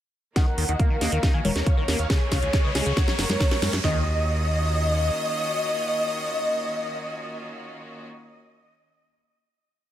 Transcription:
0.36 D#3 A#3 C#4 D#4 F#4 D#5 F#5, kick, snare, closed hi-hat, riser
0.47 A#4
0.58 D#2 D#3 A#4, open hi-hat
0.69 D#2 D#3 D#5 F#5, closed hi-hat
0.79 A#3 A#4 F5, kick, closed hi-hat
0.90 D#3 A#4
1.01 D#2 A#3 D#5 F#5, snare, open hi-hat
1.12 D#2 D#3 A#4, closed hi-hat
1.23 D#4 A#4, kick, snare, closed hi-hat
1.34 D#3 F5 G#5
1.44 D#1 D#3 A#4 C#5, open hi-hat, high conga
1.55 D#2 A#4, snare, closed hi-hat
1.66 C#5 F5, kick, closed hi-hat
1.77 D#3 A#4
1.88 D#2 A#3 A#4, snare, open hi-hat
1.99 D#2 C#5 F5, closed hi-hat
2.10 C#3 G#3 G#4 C#5, kick, snare, closed hi-hat
2.21 G#4
2.32 C#2 C#3 C#5 F5, kick, snare, open hi-hat
2.42 C#2 C#3 G#4, closed hi-hat
2.53 G#3 G#4, kick, snare, closed hi-hat
2.64 C#3 B4 D#5
2.75 C#2 G#3 G#4, snare, open hi-hat
2.86 C#2 C#3 G#4, closed hi-hat
2.97 A#3 F#4 A#4 C#5, kick, snare, closed hi-hat
3.08 F#3, snare
3.18 F#1 F#3, snare, open hi-hat
3.29 F#2, snare, closed hi-hat, high conga
3.40 kick, snare, closed hi-hat
3.51 F#3, snare
3.62 F#2 C#4, snare, open hi-hat, high conga
3.73 F#2, snare, closed hi-hat
3.84 D#2 D#3 A#3 C#4 F4 F#4 D#5, snare, floor tom

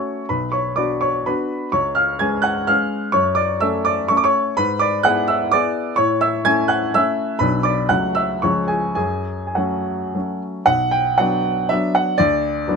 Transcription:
Already playing: A3 C#4 F#4 C#5 C#6
0.29 B1 B4 B5
0.52 C#5 C#6
0.76 B3 D4 F#4 D5 D6
1.01 C#5 C#6
1.26 B3 D4 F#4 B4 B5
1.72 C#2 C#5 C#6
1.95 F5 F6
2.19 G#3 C#4 B4 G#5 G#6
2.42 F#5 F#6
2.67 G#3 C#4 B4 F5 F6
3.12 F#2 C#5 C#6
3.35 D5 D6
3.60 A3 C#4 A4 E5 E6
3.85 D5 D6
4.08 A3 C#4 A4 C#6
4.17 D6
4.24 C#5 C#6
4.57 G#2 B4 B5
4.79 D5 D6
5.03 B3 E4 G#4 F#5 F#6
5.28 E5 E6
5.51 B3 E4 G#4 D5 D6
5.96 A2 C#5 C#6
6.21 E5 E6
6.45 A3 C#4 E4 G#5 G#6
6.68 F#5 F#6
6.94 A3 C#4 E4 E5 E6
7.39 B1 F#3 B3 D4 B4 B5
7.63 D5 D6
7.89 C#2 F#3 A3 C#4 F#5 F#6
8.15 E5 E6
8.42 C#2 F3 G#3 C#4 C#5 C#6
8.68 G#4 G#5
8.95 F#2 G#4 G#5
9.47 G#5
9.55 F#3 A3 C#4 F#4 F#5
10.14 F#3 A3 C#4
10.66 B1 F#5
10.91 G5
11.18 F#3 B3 D4 F#5
11.69 F#3 B3 D4 E5
11.95 F#5
12.18 D2 D5
12.67 F#3 B3 D4

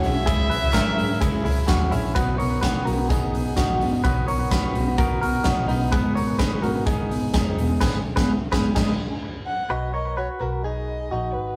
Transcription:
Already playing: C#3 G#3 C#4 E4 F#4
0.03 B1 C#4 E4 G#4 E5, open hi-hat
0.26 C#2 C#3 F#3 G#3 C#4 E4 G#4, kick, hi-hat pedal, ride
0.49 C#4 E4 G#4 B4, open hi-hat
0.63 C#2
0.73 G#1 G#3 C#4 E4 A#4, kick, snare, clap, hi-hat pedal, ride
0.77 G#4
0.97 G#2 C#4 E4 G#4, open hi-hat
1.21 C#3 G#3 C#4 E4 G#4, kick, hi-hat pedal, ride
1.44 C#2 C#4 E4 G#4, open hi-hat
1.67 D#2 G#3 C#4 E4 F#4 G#4, kick, snare, clap, hi-hat pedal, ride
1.91 A#1 C#4 E4 G#4, open hi-hat
2.15 B1 B2 D#3 F#3 B3 D#4 F#4 B4, kick, closed hi-hat
2.38 B3 D#4 A#4 C#5, open hi-hat
2.43 F#3
2.61 B2 D#3 F#3 B3 F#4 B4, kick, snare, closed hi-hat
2.65 D#4
2.85 B1 B3 D#4 F#4 A#4, open hi-hat
2.90 F#3
3.09 D#3 F#3 B3 D#4 G#4, kick, closed hi-hat
3.34 F#3 B3 D#4, open hi-hat
3.56 A#1 B2 D#3 F#3 B3 D#4 F#4, kick, snare, closed hi-hat
3.80 G#1 F#3 B3 D#4, open hi-hat
4.04 B1 B2 D#3 F#3 B3 D#4 F#4 B4, kick, closed hi-hat
4.26 B3 D#4 A#4 C#5, open hi-hat
4.30 F#3
4.50 B2 D#3 F#3 B3 D#4 F#4 B4, kick, snare, closed hi-hat
4.73 B1 F#3 B3 D#4, open hi-hat
4.97 D#3 F#3 B3 D#4 F#4 A#4, kick, closed hi-hat
5.21 F#3 B3 D#4 F#4 A#4, open hi-hat
5.44 A#1 B2 D#3 F#3 B3 D#4 F#4, kick, snare, closed hi-hat
5.68 B1 F#3 B3 D#4, open hi-hat
5.91 G#1 G#2 D#3 G#3 B3 D#4 G#4 B4, kick, closed hi-hat
6.15 G#3 B3 D#4 A#4 C#5, open hi-hat
6.39 G#2 D#3 G#3 B3 D#4 G#4 B4, kick, snare, closed hi-hat
6.62 G#1 G#3 B3 D#4 F#4 A#4, open hi-hat
6.86 D#3 G#3 B3 D#4 G#4, kick, closed hi-hat
7.09 G#3 B3 D#4, open hi-hat
7.33 F#1 G#2 D#3 G#3 B3 D#4 G#4, kick, snare, closed hi-hat
7.57 E1 G#3 B3 D#4, open hi-hat
7.81 G#1 G#2 D#3 G#3 B3 D#4 G#4 B4, kick, snare, crash
8.16 G#1 G#3 B3 D#4 G#4 B4, kick, snare
8.51 G#1 G#3 B3 D#4 G#4 B4, kick, snare
8.75 G#1 D#3 G#3 B3 D#4 G#4, kick, snare, crash
9.46 F#5
9.69 B1 F#4 B4 D#5
9.94 A#4 C#5 D#5
10.17 F#4 B4 C#5
10.39 B1 F#4 A#4 B4
10.63 D#4 G#4 D#5
11.11 A#1 D#4 F#4
11.33 G#1 B4

